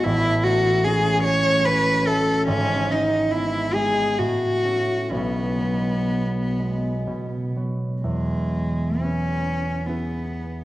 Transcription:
<<
  \new Staff \with { instrumentName = "Cello" } { \time 3/4 \key e \major \tempo 4 = 70 e'8 fis'8 gis'8 cis''8 b'8 a'8 | cis'8 dis'8 e'8 gis'8 fis'4 | b2~ b8 r8 | gis4 cis'4 b4 | }
  \new Staff \with { instrumentName = "Harp" } { \time 3/4 \key e \major <a,, a,>8 a8 cis'8 fis'8 cis'8 a8 | <gis,, gis,>8 gis8 b8 gis8 a,8 <a cis'>8 | <b,, b,>8 gis8 b8 gis8 b,8 <fis b>8 | e,4 <e' gis' b'>4 <e' gis' b'>4 | }
>>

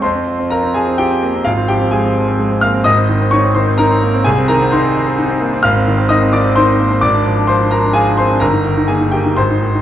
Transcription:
\new Staff \with { instrumentName = "Grand piano" } { \time 3/4 \key f \minor \tempo 4 = 129 << { <c'' c'''>4 <bes' bes''>8 <aes' aes''>8 <g' g''>4 | <f' f''>8 <g' g''>8 <aes' aes''>4 r8 <f'' f'''>8 | <ees'' ees'''>4 <des'' des'''>8 <c'' c'''>8 <bes' bes''>4 | <aes' aes''>8 <bes' bes''>8 <c'' c'''>4 r4 |
\key ees \major <f'' f'''>4 <ees'' ees'''>8 <d'' d'''>8 <c'' c'''>4 | <d'' d'''>4 <c'' c'''>8 <bes' bes''>8 <aes' aes''>8 <c'' c'''>8 | <bes' bes''>4 <aes' aes''>8 <g' g''>8 <c'' c'''>4 | } \\ { f,16 c'16 f16 c'16 f'16 c'16 f16 c'16 f'16 c'16 bes16 c'16 | aes,,16 c'16 f16 c'16 aes16 c'16 f16 c'16 aes16 c'16 bes16 c'16 | aes,,16 c'16 ees16 c'16 ees'16 c'16 ees16 c'16 ees'16 c'16 bes16 c'16 | c,16 c'16 ees16 c'16 ees'16 c'16 ees16 c'16 ees'16 c'16 bes16 c'16 |
aes,,16 c'16 ees16 c'16 ees'16 c'16 ees16 c'16 ees'16 c'16 bes16 c'16 | aes,,16 d'16 f16 d'16 f'16 d'16 f16 d'16 f'16 d'16 c'16 d'16 | g,,16 ees'16 ees16 ees'16 bes16 ees'16 ees16 ees'16 aes,,16 ees'16 ees16 ees'16 | } >> }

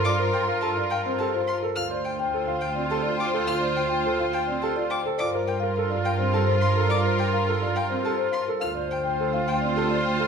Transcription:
<<
  \new Staff \with { instrumentName = "Violin" } { \time 3/4 \key g \minor \tempo 4 = 105 d'''16 r16 g''16 r16 a''16 r16 g''16 r16 a''16 r16 c'''16 r16 | f'''16 r16 g''16 r8. g''16 r16 a''16 r16 d'''16 r16 | f'''16 r16 g''16 r8. g''16 r16 a''16 r16 d'''16 r16 | d'''16 r16 g''16 r8. g''16 r16 a''16 r16 c'''16 r16 |
d'''16 r16 g''16 r8. g''16 r16 a''16 r16 c'''16 r16 | f'''16 r16 g''16 r8. g''16 r16 a''16 r8. | }
  \new Staff \with { instrumentName = "Marimba" } { \time 3/4 \key g \minor d''16 c''16 bes'16 f''16 bes'16 d''16 f''16 c''16 g'16 c''16 f''16 bes'16 | f''16 d''16 c''16 g''16 c''16 f''16 g''16 d''16 g'16 d''16 g''16 c''16 | f''16 d''16 c''16 g''16 c''16 f''16 g''16 d''16 g'16 d''16 g''16 c''16 | d''16 c''16 bes'16 f''16 bes'16 d''16 f''16 c''16 g'16 c''16 f''16 bes'16 |
d''16 c''16 bes'16 f''16 bes'16 d''16 f''16 c''16 g'16 c''16 f''16 bes'16 | f''16 d''16 c''16 g''16 c''16 f''16 g''16 d''16 g'16 d''16 g''16 c''16 | }
  \new Staff \with { instrumentName = "Grand piano" } { \time 3/4 \key g \minor f'16 bes'16 r16 bes'16 a'16 f'16 r16 c'16 a'16 f'16 r16 a'16 | f'16 c''16 r16 c''16 a'16 f'16 r16 c'16 a'16 f'16 r16 a'16 | f'16 c''16 r16 c''16 a'16 f'16 r16 c'16 a'16 f'16 r16 a'16 | f'16 bes'16 r16 bes'16 a'16 f'16 r16 c'16 a'16 r8 a'16 |
f'16 bes'16 r16 bes'16 a'16 f'16 r16 c'16 a'16 r8 a'16 | f'16 c''16 r16 c''16 a'16 f'16 r16 c'16 a'16 r8 a'16 | }
  \new Staff \with { instrumentName = "String section" } { \time 3/4 \key g \minor <f' bes'>2~ <f' bes'>8. r16 | <f' c''>2.~ | <f' c''>2~ <f' c''>8. r16 | <f' bes'>2.~ |
<f' bes'>2~ <f' bes'>8. r16 | <f' c''>2. | }
  \new Staff \with { instrumentName = "Oboe" } { \time 3/4 \key g \minor f'2~ f'8. r16 | f'2.~ | f'2~ f'8. r16 | f'2.~ |
f'2~ f'8. r16 | f'2. | }
  \new Staff \with { instrumentName = "Double bass section" } { \clef bass \time 3/4 \key g \minor g,2. | d,2.~ | d,2. | g,2.~ |
g,2. | d,2. | }
>>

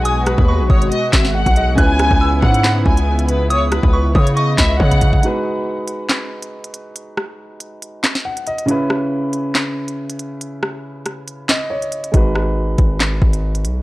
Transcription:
<<
  \new Staff \with { instrumentName = "Synth bell" } { \time 4/4 \key gis \minor \tempo 4 = 139 dis'''4 cis'''8 dis'''8 r2 | fis'''4 e'''4 b''2 | dis'''4 cis'''8 dis'''8 cis'''8 b''8 r4 | r1 |
r1 | r1 | r1 | r1 | }
  \new Staff \with { instrumentName = "Violin section" } { \time 4/4 \key gis \minor gis''8 b'4 cis''8 dis''8 e''8 fis''4 | gis''4. fis''4 gis''4 b'8 | cis''8 b'4 cis''8 dis''8 e''8 fis''4 | r1 |
r1 | r1 | r1 | r1 | }
  \new Staff \with { instrumentName = "Grand piano" } { \time 4/4 \key gis \minor << { r2. fis''8 dis''8 | r1 | r2 r8 dis''8 cis''4 | r1 |
r2. fis''8 dis''8 | r1 | r2 r8 dis''8 cis''4 | r1 | } \\ { <gis dis' fis' b'>1 | <cis cis' e' b'>1~ | <cis cis' e' b'>1 | <gis dis' fis' b'>1~ |
<gis dis' fis' b'>1 | <cis cis' e' b'>1~ | <cis cis' e' b'>1 | <gis dis' fis' b'>1 | } >> }
  \new Staff \with { instrumentName = "Analog synth pad" } { \time 4/4 \key gis \minor <b, gis fis'>1 | <cis b e'>1~ | <cis b e'>1 | r1 |
r1 | r1 | r1 | r1 | }
  \new Staff \with { instrumentName = "808-style bass" } { \clef bass \time 4/4 \key gis \minor b,,8. dis,8 ais,,16 gis,,8 r8 gis,,8. b,,8. | cis,8. cis,8. gis,4 cis,4.~ | cis,8. cis,8. cis4 cis,8 cis4 | r1 |
r1 | r1 | r1 | gis,,4. gis,,4 gis,,4 b,,8 | }
  \new DrumStaff \with { instrumentName = "Drums" } \drummode { \time 4/4 hh8 <hh ss>16 bd16 r8 bd16 hh16 hh8 <hc bd sn>16 sn16 r16 <hh bd>16 hh8 | <hh bd>8 <hh ss>16 bd16 r8 <bd ss>16 hh16 <hc hh sn>8 bd16 hh16 r16 hh16 hh8 | hh8 <hh ss>16 bd16 r8 bd16 hh16 hh8 <hc bd sn>8 bd16 <hh bd>16 <hh bd>16 bd16 | hh4 r8 hh8 <hc hh sn>8. hh16 r16 hh16 hh8 |
hh8 ss8 r8 hh8 hh8 <hc hh sn>16 sn16 r16 hh16 hh16 hh16 | hh8 ss8 r8 hh8 <hc hh sn>8. hh16 r16 hh16 hh8 | hh8 ss8 r8 <hh ss>8 hh8 <hc hh sn>8 r16 hh16 hh16 hh16 | <hh bd>8 ss8 r8 <hh bd>8 <hc hh sn>8 bd16 hh16 r16 hh16 hh8 | }
>>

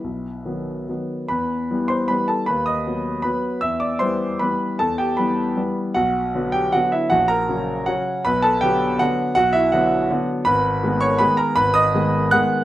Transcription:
<<
  \new Staff \with { instrumentName = "Grand piano" } { \time 3/4 \key b \phrygian \tempo 4 = 158 <e' b'>2 r4 | <b' b''>4. <c'' c'''>8 <b' b''>8 <a' a''>8 | <b' b''>8 <dis'' dis'''>4. <b' b''>4 | <e'' e'''>8 <d'' d'''>8 <c'' c'''>4 <b' b''>4 |
<a' a''>8 <g' g''>8 <b' b''>4. r8 | <fis' fis''>4. <g' g''>8 <fis' fis''>8 <e' e''>8 | <fis' fis''>8 <ais' ais''>4. <fis' fis''>4 | <b' b''>8 <a' a''>8 <g' g''>4 <fis' fis''>4 |
<fis' fis''>8 <e' e''>8 <fis' fis''>4. r8 | \key gis \minor <b' b''>4. <cis'' cis'''>8 <b' b''>8 <ais' ais''>8 | <b' b''>8 <dis'' dis'''>4. <fis'' fis'''>4 | }
  \new Staff \with { instrumentName = "Grand piano" } { \clef bass \time 3/4 \key b \phrygian b,,4 <dis fis b>4 <dis fis b>4 | e,4 <e g b>4 <e g b>4 | dis,4 <fis b>4 <fis b>4 | e,4 <e g b>4 <e g b>4 |
e,4 <e g b>4 <e g b>4 | b,,4 <d fis b>4 <d fis b>4 | ais,,4 <cis fis cis'>4 <cis fis cis'>4 | b,,4 <d fis b>4 <d fis b>4 |
b,,4 <d fis b>4 <d fis b>4 | \key gis \minor gis,,4 <dis gis b>4 <dis gis b>4 | gis,,4 <dis gis b>4 <dis gis b>4 | }
>>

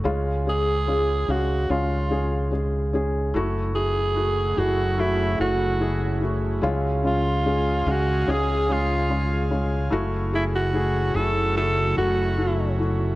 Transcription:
<<
  \new Staff \with { instrumentName = "Alto saxophone" } { \time 4/4 \key fis \minor \tempo 4 = 73 r8 gis'4 fis'8 eis'4 r4 | r8 gis'4 fis'8 e'8 fis'4 r8 | r8 eis'4 fis'8 gis'8 eis'4 r8 | r8 e'16 fis'8. a'8 a'8 fis'4 r8 | }
  \new Staff \with { instrumentName = "Felt piano" } { \time 4/4 \key fis \minor <gis cis' eis'>8 <gis cis' gis'>8 <gis cis' eis'>8 <gis cis' eis''>8 <gis cis' eis'>8 <gis cis' gis'>8 <gis cis' gis'>8 <gis cis' gis'>8 | <a e' fis'>8 <a e' fis'>8 <a e' fis'>8 <a e' gis'>8 <a e' fis'>8 <a e' a'>8 <a e' gis'>8 <a e' fis'>8 | <gis cis' eis'>8 <gis cis' eis'>8 <gis cis' gis'>8 <gis cis' eis''>8 <gis cis' gis'>8 <gis cis' eis'>8 <gis cis' eis'>8 <gis cis' eis'>8 | <a e' fis'>8 <a e' gis'>8 <a e' gis'>8 <a e' fis'>8 <a e' a'>8 <a e' fis'>8 <a e' fis'>8 <a e' fis'>8 | }
  \new Staff \with { instrumentName = "Felt piano" } { \clef bass \time 4/4 \key fis \minor cis4. r2 r8 | r1 | cis4. r2 r8 | r1 | }
  \new Staff \with { instrumentName = "Analog synth pad" } { \time 4/4 \key fis \minor << { r1 | <fis a e' fis'>1 | <gis gis' eis''>1 | <fis a e' fis'>1 | } \\ { r1 | cis1~ | cis1 | cis1 | } >> }
  \new Staff \with { instrumentName = "Fingered electric bass" } { \clef bass \time 4/4 \key fis \minor cis,4. cis,8 cis,2 | fis,,4. fis,,4 fis,,4. | cis,4. cis,8 cis,2 | fis,,4. fis,,4 fis,,4. | }
>>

